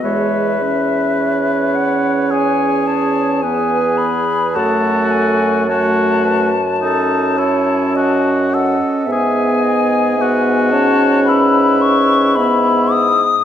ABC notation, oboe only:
X:1
M:4/4
L:1/16
Q:1/4=54
K:E
V:1 name="Oboe"
B8 G4 G4 | F4 F3 z D2 E2 F2 A2 | G4 F4 E4 E3 z |]